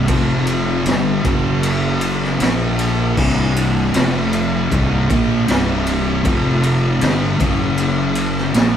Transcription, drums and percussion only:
0, 0, Header, 1, 2, 480
1, 0, Start_track
1, 0, Tempo, 768246
1, 58, Time_signature, 4, 2, 24, 8
1, 5478, End_track
2, 0, Start_track
2, 0, Title_t, "Drums"
2, 50, Note_on_c, 9, 51, 108
2, 53, Note_on_c, 9, 36, 122
2, 112, Note_off_c, 9, 51, 0
2, 115, Note_off_c, 9, 36, 0
2, 292, Note_on_c, 9, 51, 80
2, 354, Note_off_c, 9, 51, 0
2, 535, Note_on_c, 9, 51, 101
2, 549, Note_on_c, 9, 38, 113
2, 598, Note_off_c, 9, 51, 0
2, 611, Note_off_c, 9, 38, 0
2, 779, Note_on_c, 9, 36, 109
2, 779, Note_on_c, 9, 51, 74
2, 841, Note_off_c, 9, 51, 0
2, 842, Note_off_c, 9, 36, 0
2, 1019, Note_on_c, 9, 51, 115
2, 1081, Note_off_c, 9, 51, 0
2, 1256, Note_on_c, 9, 51, 93
2, 1318, Note_off_c, 9, 51, 0
2, 1396, Note_on_c, 9, 38, 38
2, 1458, Note_off_c, 9, 38, 0
2, 1500, Note_on_c, 9, 51, 116
2, 1514, Note_on_c, 9, 38, 123
2, 1562, Note_off_c, 9, 51, 0
2, 1576, Note_off_c, 9, 38, 0
2, 1742, Note_on_c, 9, 51, 84
2, 1804, Note_off_c, 9, 51, 0
2, 1983, Note_on_c, 9, 36, 116
2, 1983, Note_on_c, 9, 49, 118
2, 2045, Note_off_c, 9, 49, 0
2, 2046, Note_off_c, 9, 36, 0
2, 2227, Note_on_c, 9, 51, 85
2, 2290, Note_off_c, 9, 51, 0
2, 2462, Note_on_c, 9, 51, 108
2, 2475, Note_on_c, 9, 38, 115
2, 2524, Note_off_c, 9, 51, 0
2, 2538, Note_off_c, 9, 38, 0
2, 2705, Note_on_c, 9, 51, 81
2, 2767, Note_off_c, 9, 51, 0
2, 2946, Note_on_c, 9, 36, 105
2, 2948, Note_on_c, 9, 51, 98
2, 3008, Note_off_c, 9, 36, 0
2, 3010, Note_off_c, 9, 51, 0
2, 3185, Note_on_c, 9, 36, 112
2, 3188, Note_on_c, 9, 51, 83
2, 3248, Note_off_c, 9, 36, 0
2, 3250, Note_off_c, 9, 51, 0
2, 3425, Note_on_c, 9, 51, 112
2, 3439, Note_on_c, 9, 38, 126
2, 3488, Note_off_c, 9, 51, 0
2, 3501, Note_off_c, 9, 38, 0
2, 3665, Note_on_c, 9, 51, 82
2, 3728, Note_off_c, 9, 51, 0
2, 3904, Note_on_c, 9, 36, 113
2, 3904, Note_on_c, 9, 51, 106
2, 3967, Note_off_c, 9, 36, 0
2, 3967, Note_off_c, 9, 51, 0
2, 4145, Note_on_c, 9, 51, 82
2, 4208, Note_off_c, 9, 51, 0
2, 4381, Note_on_c, 9, 51, 108
2, 4395, Note_on_c, 9, 38, 116
2, 4444, Note_off_c, 9, 51, 0
2, 4458, Note_off_c, 9, 38, 0
2, 4623, Note_on_c, 9, 36, 106
2, 4625, Note_on_c, 9, 51, 85
2, 4685, Note_off_c, 9, 36, 0
2, 4687, Note_off_c, 9, 51, 0
2, 4859, Note_on_c, 9, 51, 98
2, 4921, Note_off_c, 9, 51, 0
2, 5094, Note_on_c, 9, 51, 86
2, 5156, Note_off_c, 9, 51, 0
2, 5231, Note_on_c, 9, 38, 35
2, 5294, Note_off_c, 9, 38, 0
2, 5337, Note_on_c, 9, 51, 123
2, 5351, Note_on_c, 9, 38, 120
2, 5400, Note_off_c, 9, 51, 0
2, 5414, Note_off_c, 9, 38, 0
2, 5478, End_track
0, 0, End_of_file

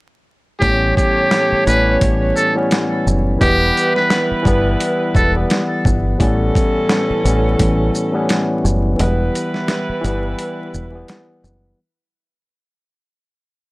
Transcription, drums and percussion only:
0, 0, Header, 1, 2, 480
1, 0, Start_track
1, 0, Tempo, 697674
1, 424, Time_signature, 4, 2, 24, 8
1, 9433, End_track
2, 0, Start_track
2, 0, Title_t, "Drums"
2, 426, Note_on_c, 9, 36, 103
2, 429, Note_on_c, 9, 42, 90
2, 494, Note_off_c, 9, 36, 0
2, 498, Note_off_c, 9, 42, 0
2, 669, Note_on_c, 9, 36, 100
2, 675, Note_on_c, 9, 42, 53
2, 675, Note_on_c, 9, 82, 57
2, 738, Note_off_c, 9, 36, 0
2, 744, Note_off_c, 9, 42, 0
2, 744, Note_off_c, 9, 82, 0
2, 903, Note_on_c, 9, 38, 108
2, 909, Note_on_c, 9, 42, 73
2, 972, Note_off_c, 9, 38, 0
2, 978, Note_off_c, 9, 42, 0
2, 1151, Note_on_c, 9, 42, 55
2, 1151, Note_on_c, 9, 82, 56
2, 1220, Note_off_c, 9, 42, 0
2, 1220, Note_off_c, 9, 82, 0
2, 1385, Note_on_c, 9, 42, 98
2, 1386, Note_on_c, 9, 36, 96
2, 1454, Note_off_c, 9, 42, 0
2, 1455, Note_off_c, 9, 36, 0
2, 1629, Note_on_c, 9, 82, 58
2, 1698, Note_off_c, 9, 82, 0
2, 1865, Note_on_c, 9, 42, 87
2, 1873, Note_on_c, 9, 38, 125
2, 1934, Note_off_c, 9, 42, 0
2, 1942, Note_off_c, 9, 38, 0
2, 2114, Note_on_c, 9, 82, 60
2, 2183, Note_off_c, 9, 82, 0
2, 2346, Note_on_c, 9, 36, 101
2, 2349, Note_on_c, 9, 42, 91
2, 2414, Note_off_c, 9, 36, 0
2, 2418, Note_off_c, 9, 42, 0
2, 2596, Note_on_c, 9, 42, 54
2, 2596, Note_on_c, 9, 82, 54
2, 2664, Note_off_c, 9, 42, 0
2, 2664, Note_off_c, 9, 82, 0
2, 2727, Note_on_c, 9, 38, 39
2, 2795, Note_off_c, 9, 38, 0
2, 2823, Note_on_c, 9, 38, 114
2, 2830, Note_on_c, 9, 42, 73
2, 2892, Note_off_c, 9, 38, 0
2, 2899, Note_off_c, 9, 42, 0
2, 3064, Note_on_c, 9, 36, 103
2, 3071, Note_on_c, 9, 42, 56
2, 3071, Note_on_c, 9, 82, 55
2, 3133, Note_off_c, 9, 36, 0
2, 3140, Note_off_c, 9, 42, 0
2, 3140, Note_off_c, 9, 82, 0
2, 3305, Note_on_c, 9, 42, 101
2, 3374, Note_off_c, 9, 42, 0
2, 3541, Note_on_c, 9, 36, 97
2, 3549, Note_on_c, 9, 82, 58
2, 3610, Note_off_c, 9, 36, 0
2, 3617, Note_off_c, 9, 82, 0
2, 3785, Note_on_c, 9, 42, 85
2, 3793, Note_on_c, 9, 38, 125
2, 3854, Note_off_c, 9, 42, 0
2, 3862, Note_off_c, 9, 38, 0
2, 4025, Note_on_c, 9, 36, 99
2, 4034, Note_on_c, 9, 82, 56
2, 4094, Note_off_c, 9, 36, 0
2, 4102, Note_off_c, 9, 82, 0
2, 4265, Note_on_c, 9, 36, 105
2, 4268, Note_on_c, 9, 42, 90
2, 4334, Note_off_c, 9, 36, 0
2, 4337, Note_off_c, 9, 42, 0
2, 4509, Note_on_c, 9, 36, 102
2, 4515, Note_on_c, 9, 42, 55
2, 4515, Note_on_c, 9, 82, 55
2, 4578, Note_off_c, 9, 36, 0
2, 4584, Note_off_c, 9, 42, 0
2, 4584, Note_off_c, 9, 82, 0
2, 4743, Note_on_c, 9, 38, 115
2, 4749, Note_on_c, 9, 42, 72
2, 4812, Note_off_c, 9, 38, 0
2, 4818, Note_off_c, 9, 42, 0
2, 4992, Note_on_c, 9, 42, 53
2, 4992, Note_on_c, 9, 82, 56
2, 5060, Note_off_c, 9, 42, 0
2, 5060, Note_off_c, 9, 82, 0
2, 5225, Note_on_c, 9, 36, 94
2, 5225, Note_on_c, 9, 42, 101
2, 5294, Note_off_c, 9, 36, 0
2, 5294, Note_off_c, 9, 42, 0
2, 5468, Note_on_c, 9, 82, 58
2, 5537, Note_off_c, 9, 82, 0
2, 5705, Note_on_c, 9, 42, 90
2, 5713, Note_on_c, 9, 38, 126
2, 5773, Note_off_c, 9, 42, 0
2, 5782, Note_off_c, 9, 38, 0
2, 5954, Note_on_c, 9, 82, 56
2, 6022, Note_off_c, 9, 82, 0
2, 6188, Note_on_c, 9, 42, 89
2, 6257, Note_off_c, 9, 42, 0
2, 6435, Note_on_c, 9, 42, 54
2, 6435, Note_on_c, 9, 82, 56
2, 6504, Note_off_c, 9, 42, 0
2, 6504, Note_off_c, 9, 82, 0
2, 6566, Note_on_c, 9, 38, 39
2, 6634, Note_off_c, 9, 38, 0
2, 6662, Note_on_c, 9, 38, 112
2, 6669, Note_on_c, 9, 42, 72
2, 6731, Note_off_c, 9, 38, 0
2, 6738, Note_off_c, 9, 42, 0
2, 6911, Note_on_c, 9, 42, 53
2, 6911, Note_on_c, 9, 82, 55
2, 6980, Note_off_c, 9, 42, 0
2, 6980, Note_off_c, 9, 82, 0
2, 7145, Note_on_c, 9, 42, 99
2, 7214, Note_off_c, 9, 42, 0
2, 7389, Note_on_c, 9, 82, 58
2, 7458, Note_off_c, 9, 82, 0
2, 7626, Note_on_c, 9, 42, 91
2, 7634, Note_on_c, 9, 38, 127
2, 7694, Note_off_c, 9, 42, 0
2, 7702, Note_off_c, 9, 38, 0
2, 7874, Note_on_c, 9, 82, 58
2, 7943, Note_off_c, 9, 82, 0
2, 9433, End_track
0, 0, End_of_file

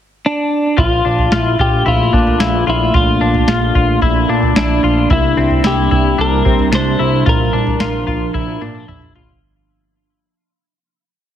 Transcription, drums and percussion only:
0, 0, Header, 1, 2, 480
1, 0, Start_track
1, 0, Tempo, 540541
1, 693, Time_signature, 4, 2, 24, 8
1, 10081, End_track
2, 0, Start_track
2, 0, Title_t, "Drums"
2, 692, Note_on_c, 9, 43, 99
2, 693, Note_on_c, 9, 36, 83
2, 781, Note_off_c, 9, 36, 0
2, 781, Note_off_c, 9, 43, 0
2, 1051, Note_on_c, 9, 43, 54
2, 1140, Note_off_c, 9, 43, 0
2, 1171, Note_on_c, 9, 38, 82
2, 1259, Note_off_c, 9, 38, 0
2, 1412, Note_on_c, 9, 43, 58
2, 1501, Note_off_c, 9, 43, 0
2, 1653, Note_on_c, 9, 43, 50
2, 1742, Note_off_c, 9, 43, 0
2, 1893, Note_on_c, 9, 36, 74
2, 1981, Note_off_c, 9, 36, 0
2, 2017, Note_on_c, 9, 43, 53
2, 2106, Note_off_c, 9, 43, 0
2, 2133, Note_on_c, 9, 38, 92
2, 2222, Note_off_c, 9, 38, 0
2, 2612, Note_on_c, 9, 43, 102
2, 2701, Note_off_c, 9, 43, 0
2, 2969, Note_on_c, 9, 43, 57
2, 3058, Note_off_c, 9, 43, 0
2, 3088, Note_on_c, 9, 38, 82
2, 3177, Note_off_c, 9, 38, 0
2, 3330, Note_on_c, 9, 43, 58
2, 3331, Note_on_c, 9, 36, 78
2, 3419, Note_off_c, 9, 43, 0
2, 3420, Note_off_c, 9, 36, 0
2, 3568, Note_on_c, 9, 43, 53
2, 3569, Note_on_c, 9, 36, 70
2, 3657, Note_off_c, 9, 43, 0
2, 3658, Note_off_c, 9, 36, 0
2, 3931, Note_on_c, 9, 43, 47
2, 4019, Note_off_c, 9, 43, 0
2, 4051, Note_on_c, 9, 38, 103
2, 4140, Note_off_c, 9, 38, 0
2, 4530, Note_on_c, 9, 43, 110
2, 4531, Note_on_c, 9, 36, 93
2, 4618, Note_off_c, 9, 43, 0
2, 4620, Note_off_c, 9, 36, 0
2, 4890, Note_on_c, 9, 43, 58
2, 4978, Note_off_c, 9, 43, 0
2, 5009, Note_on_c, 9, 38, 91
2, 5097, Note_off_c, 9, 38, 0
2, 5251, Note_on_c, 9, 43, 61
2, 5340, Note_off_c, 9, 43, 0
2, 5493, Note_on_c, 9, 43, 54
2, 5581, Note_off_c, 9, 43, 0
2, 5732, Note_on_c, 9, 36, 79
2, 5821, Note_off_c, 9, 36, 0
2, 5852, Note_on_c, 9, 43, 53
2, 5941, Note_off_c, 9, 43, 0
2, 5972, Note_on_c, 9, 38, 94
2, 6061, Note_off_c, 9, 38, 0
2, 6452, Note_on_c, 9, 43, 109
2, 6541, Note_off_c, 9, 43, 0
2, 6810, Note_on_c, 9, 43, 56
2, 6899, Note_off_c, 9, 43, 0
2, 6928, Note_on_c, 9, 38, 83
2, 7017, Note_off_c, 9, 38, 0
2, 7170, Note_on_c, 9, 43, 61
2, 7259, Note_off_c, 9, 43, 0
2, 7408, Note_on_c, 9, 36, 72
2, 7409, Note_on_c, 9, 48, 46
2, 7497, Note_off_c, 9, 36, 0
2, 7497, Note_off_c, 9, 48, 0
2, 7650, Note_on_c, 9, 47, 55
2, 7739, Note_off_c, 9, 47, 0
2, 7890, Note_on_c, 9, 45, 70
2, 7979, Note_off_c, 9, 45, 0
2, 8010, Note_on_c, 9, 45, 62
2, 8099, Note_off_c, 9, 45, 0
2, 8131, Note_on_c, 9, 43, 78
2, 8220, Note_off_c, 9, 43, 0
2, 8251, Note_on_c, 9, 43, 68
2, 8339, Note_off_c, 9, 43, 0
2, 10081, End_track
0, 0, End_of_file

